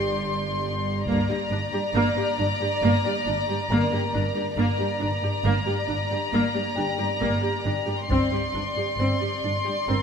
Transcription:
0.00 1.03 G1 medium
0.00 1.03 G2 medium
0.00 1.03 G4 medium
0.00 1.02 D5 medium
0.00 1.03 C6 medium
1.06 1.15 G1 medium
1.06 1.15 G2 medium
1.06 1.27 A#3 medium
1.06 4.53 D5 medium
1.06 4.54 A#5 medium
1.06 taiko medium
1.29 1.37 G2 soft
1.29 1.37 G4 soft
1.50 1.58 G1 soft
1.50 1.58 G2 soft
1.50 1.59 D4 soft
1.73 1.81 G2 soft
1.73 1.81 G4 soft
1.94 2.03 G1 medium
1.94 2.02 G2 medium
1.94 2.15 A#3 medium
2.17 2.25 G2 soft
2.17 2.25 G4 soft
2.38 2.47 G1 soft
2.38 2.47 G2 soft
2.38 2.46 D4 soft
2.60 2.69 G2 soft
2.60 2.68 G4 soft
2.83 2.91 G1 medium
2.83 2.91 G2 medium
2.83 3.03 A#3 medium
3.05 3.13 G2 soft
3.05 3.13 G4 soft
3.27 3.35 G1 soft
3.27 3.35 G2 soft
3.27 3.35 D4 soft
3.49 3.57 G2 soft
3.49 3.57 G4 soft
3.70 3.78 G1 medium
3.70 3.79 G2 medium
3.70 3.91 A#3 medium
3.70 6.29 A#4 soft
3.70 6.29 A#5 soft
3.93 4.01 G2 soft
3.93 4.01 G4 medium
4.14 4.23 G1 soft
4.14 4.22 G2 soft
4.14 4.22 D4 soft
4.35 4.44 G2 soft
4.35 4.43 G4 soft
4.57 4.65 G1 medium
4.57 4.66 G2 medium
4.57 4.77 A#3 medium
4.57 8.06 D5 medium
4.57 8.06 A#5 medium
4.78 4.87 G2 soft
4.78 4.86 G4 soft
5.00 5.10 G1 soft
5.00 5.09 G2 soft
5.00 5.08 D4 soft
5.23 5.31 G2 soft
5.23 5.31 G4 soft
5.45 5.53 G1 medium
5.45 5.53 G2 medium
5.45 5.65 A#3 medium
5.66 5.75 G2 soft
5.66 5.74 G4 soft
5.89 5.97 G1 soft
5.89 5.97 G2 soft
5.89 5.97 D4 soft
6.11 6.19 G2 soft
6.11 6.19 G4 soft
6.33 6.41 G1 medium
6.33 6.41 G2 medium
6.33 6.53 A#3 medium
6.55 6.63 G2 soft
6.55 6.63 G4 soft
6.75 6.86 G1 soft
6.75 6.85 G2 soft
6.75 6.85 D4 soft
6.75 9.39 G4 soft
6.75 9.39 G5 soft
6.99 7.07 G2 soft
6.99 7.07 G4 soft
7.21 7.30 G1 medium
7.21 7.29 G2 medium
7.21 7.41 A#3 medium
7.43 7.51 G2 soft
7.43 7.51 G4 soft
7.65 7.74 G1 soft
7.65 7.73 G2 soft
7.65 7.73 D4 soft
7.87 7.95 G2 soft
7.87 7.95 G4 soft
8.09 8.18 G1 medium
8.09 8.18 G2 medium
8.09 8.30 C4 medium
8.09 10.03 D5 medium
8.09 10.03 C6 soft
8.09 taiko medium
8.32 8.40 G2 soft
8.32 8.40 G4 soft
8.54 8.62 G1 soft
8.54 8.63 G2 soft
8.54 8.62 D4 soft
8.77 8.85 G2 soft
8.77 8.85 G4 soft
8.99 9.07 G1 soft
8.99 9.07 G2 medium
8.99 9.20 C4 soft
9.21 9.30 G2 soft
9.21 9.29 G4 soft
9.43 9.51 G1 soft
9.43 9.52 G2 soft
9.43 9.51 D4 soft
9.65 9.75 G2 soft
9.65 9.73 G4 soft
9.88 9.96 G1 soft
9.88 9.97 G2 soft
9.88 10.03 C4 soft
9.88 10.03 A#4 soft
9.88 10.03 A#5 soft

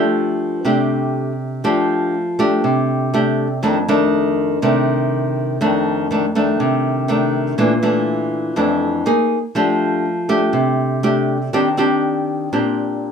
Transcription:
0.00 0.63 F3 medium
0.00 0.61 A3 medium
0.00 0.62 D4 medium
0.00 0.62 G4 medium
0.65 1.61 C3 medium
0.65 1.32 A3 soft
0.65 1.32 D4 medium
0.65 1.32 G4 medium
1.64 2.61 F3 medium
1.64 2.13 A3 soft
1.64 2.13 D4 medium
1.64 2.14 G4 medium
2.39 3.09 A3 medium
2.39 3.09 D4 medium
2.39 3.09 G4 medium
2.64 3.60 C3 medium
3.14 3.46 A3 medium
3.14 3.47 D4 medium
3.14 3.47 G4 medium
3.63 4.59 F2 medium
3.63 3.77 D#3 medium
3.63 3.77 A3 medium
3.63 3.77 D4 medium
3.88 4.58 D#3 medium
3.88 4.58 A3 medium
3.88 4.58 D4 medium
4.62 5.58 C3 medium
4.62 5.57 D#3 medium
4.62 5.57 A3 soft
4.62 5.57 D4 medium
5.61 6.57 F2 medium
5.61 6.06 D#3 medium
5.61 6.06 A3 medium
5.61 6.06 D4 medium
6.11 6.25 D#3 medium
6.11 6.25 A3 medium
6.11 6.25 D4 medium
6.35 7.05 D#3 medium
6.35 7.05 A3 medium
6.35 7.05 D4 medium
6.60 7.56 C3 medium
7.08 7.56 D#3 medium
7.08 7.56 A3 medium
7.08 7.56 D4 medium
7.58 8.54 A#2 medium
7.58 7.72 E3 medium
7.58 7.72 A3 medium
7.58 7.73 D4 medium
7.83 8.52 E3 medium
7.83 8.53 A3 medium
7.83 8.53 D4 medium
8.56 9.03 F2 medium
8.56 9.04 E3 medium
8.56 9.04 A3 soft
8.56 9.04 D4 medium
9.06 9.38 A#3 medium
9.06 9.38 D#4 medium
9.06 9.38 G#4 medium
9.55 10.51 F3 medium
9.55 10.04 A3 medium
9.55 10.05 D4 medium
9.55 10.05 G4 medium
10.29 10.99 A3 medium
10.29 10.99 D4 medium
10.29 10.99 G4 medium
10.53 11.50 C3 medium
11.03 11.36 A3 medium
11.03 11.37 D4 medium
11.03 11.37 G4 medium
11.53 12.49 D#3 medium
11.53 11.67 C4 medium
11.53 11.68 D4 medium
11.53 11.68 G4 medium
11.77 12.47 C4 medium
11.77 12.48 D4 medium
11.77 12.48 G4 medium
12.53 13.12 A#2 medium
12.53 13.12 C4 soft
12.53 13.12 D4 medium
12.53 13.12 G4 medium

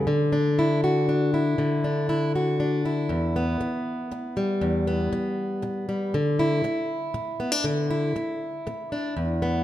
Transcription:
0.07 1.57 D3 medium
0.33 1.07 D4 medium
0.59 0.83 E4 medium
0.84 1.33 F#4 medium
1.09 1.56 D4 medium
1.34 2.08 E4 medium
1.58 3.10 D3 medium
1.84 2.59 D4 medium
2.09 2.34 E4 medium
2.35 2.85 F#4 soft
2.60 3.07 D4 soft
2.85 4.62 E4 medium
3.09 3.60 E2 medium
3.36 4.86 B3 medium
3.61 muted steel-string acoustic guitar stroke medium
4.11 muted steel-string acoustic guitar stroke medium
4.37 5.88 G3 medium
4.61 5.11 E2 medium
4.87 6.13 B3 medium
5.12 muted steel-string acoustic guitar stroke medium
5.62 muted steel-string acoustic guitar stroke medium
5.89 6.14 G3 medium
6.14 6.64 D3 medium
6.39 7.90 E4 medium
6.64 muted steel-string acoustic guitar stroke medium
7.14 muted steel-string acoustic guitar stroke medium
7.40 7.52 B3 medium
7.52 7.65 D4 soft
7.64 8.15 D3 medium
7.90 9.64 E4 medium
8.16 muted steel-string acoustic guitar stroke medium
8.67 muted steel-string acoustic guitar stroke medium
8.92 9.14 D4 medium
9.17 9.64 E2 medium
9.42 9.64 B3 medium

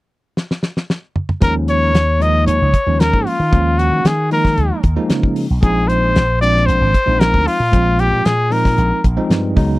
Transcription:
0.37 snare medium
0.51 snare medium
0.63 snare medium
0.77 snare medium
0.90 snare medium
1.16 mid tom medium
1.29 mid tom medium
1.41 1.90 D#2 medium
1.41 2.00 F3 medium
1.41 2.00 G#3 medium
1.41 2.00 A#3 medium
1.41 2.00 C#4 medium
1.41 1.54 A#4 medium
1.41 kick medium
1.41 closed hi-hat medium
1.68 2.24 C#5 medium
1.68 closed hi-hat medium
1.94 2.43 D#2 medium
1.94 snare medium
1.94 closed hi-hat medium
2.20 2.69 F3 medium
2.20 2.69 G#3 medium
2.20 2.69 A#3 medium
2.20 2.69 D#4 medium
2.20 2.46 D#5 medium
2.20 closed hi-hat medium
2.47 2.59 D#2 medium
2.47 3.02 C#5 medium
2.47 closed hi-hat medium
2.62 2.73 C#2 medium
2.74 kick medium
2.74 closed hi-hat medium
2.86 3.11 D#2 medium
2.86 3.35 F3 medium
2.86 3.35 G#3 medium
2.86 3.35 A#3 medium
2.86 3.35 C#4 medium
3.00 3.28 A#4 medium
3.00 snare medium
3.00 closed hi-hat medium
3.13 3.25 G#2 medium
3.13 kick medium
3.27 3.80 F4 medium
3.27 open hi-hat medium
3.40 3.55 D#3 medium
3.52 3.89 D#2 medium
3.52 4.10 F3 medium
3.52 4.11 G#3 medium
3.52 4.11 A#3 medium
3.52 4.11 C#4 medium
3.52 kick medium
3.52 closed hi-hat medium
3.79 4.08 F#4 medium
3.79 closed hi-hat medium
3.92 4.04 D#3 medium
4.05 4.59 D#3 medium
4.05 4.32 G#4 medium
4.05 snare loud
4.05 closed hi-hat medium
4.31 4.80 F3 medium
4.31 4.80 G#3 medium
4.31 4.80 A#3 medium
4.31 4.80 D#4 medium
4.31 4.81 A#4 medium
4.31 open hi-hat medium
4.45 kick medium
4.45 snare soft
4.58 4.70 D#2 medium
4.58 closed hi-hat medium
4.83 4.96 D#2 medium
4.83 kick medium
4.83 closed hi-hat soft
4.96 5.45 F3 medium
4.96 5.46 G#3 medium
4.96 5.45 A#3 medium
4.96 5.46 D#4 medium
5.09 5.46 C#3 medium
5.09 snare medium
5.09 closed hi-hat medium
5.23 kick medium
5.36 open hi-hat medium
5.50 5.62 B1 medium
5.62 6.11 A#1 medium
5.62 6.21 F3 medium
5.62 6.21 G#3 medium
5.62 6.21 C4 medium
5.62 6.21 D#4 medium
5.62 5.89 G#4 medium
5.62 kick loud
5.62 closed hi-hat medium
5.88 6.41 C5 medium
5.88 closed hi-hat medium
6.16 6.65 A#1 medium
6.16 snare medium
6.16 closed hi-hat medium
6.41 6.90 F3 medium
6.41 6.91 G#3 medium
6.41 6.90 C4 medium
6.41 6.91 D4 medium
6.41 6.68 D5 medium
6.41 closed hi-hat medium
6.57 snare soft
6.66 6.80 A#1 medium
6.66 7.21 C5 medium
6.66 closed hi-hat medium
6.81 6.93 G#1 medium
6.94 kick medium
6.94 closed hi-hat soft
7.06 7.31 A#1 medium
7.06 7.55 F3 medium
7.06 7.56 G#3 medium
7.06 7.55 C4 medium
7.06 7.56 D#4 medium
7.20 7.49 A#4 medium
7.20 snare loud
7.20 closed hi-hat medium
7.34 7.46 D2 medium
7.34 kick medium
7.47 8.01 F4 medium
7.47 open hi-hat medium
7.60 7.75 A#2 medium
7.72 8.09 A#1 medium
7.72 8.31 F3 medium
7.72 8.31 G#3 medium
7.72 8.31 C4 medium
7.72 8.31 F4 medium
7.72 kick medium
7.72 closed hi-hat medium
7.99 8.27 G4 medium
7.99 closed hi-hat medium
8.13 8.24 A#2 medium
8.25 8.80 A#2 medium
8.25 8.54 G#4 medium
8.25 snare medium
8.25 closed hi-hat medium
8.50 9.00 F3 medium
8.50 9.00 G#3 medium
8.50 9.00 C4 medium
8.50 9.00 D#4 medium
8.50 9.05 A#4 medium
8.50 open hi-hat medium
8.65 kick medium
8.65 snare soft
8.78 8.90 A#1 medium
8.78 closed hi-hat medium
9.04 9.17 A#1 medium
9.04 kick medium
9.04 closed hi-hat soft
9.17 9.57 F3 medium
9.17 9.55 G#3 medium
9.17 9.57 C4 medium
9.17 9.55 D#4 medium
9.30 9.54 G2 medium
9.30 snare medium
9.30 closed hi-hat medium
9.56 9.79 C#2 medium
9.56 9.79 F#3 medium
9.56 9.79 G#3 medium
9.56 9.79 B3 medium
9.56 9.79 D#4 medium
9.56 kick medium
9.56 open hi-hat medium

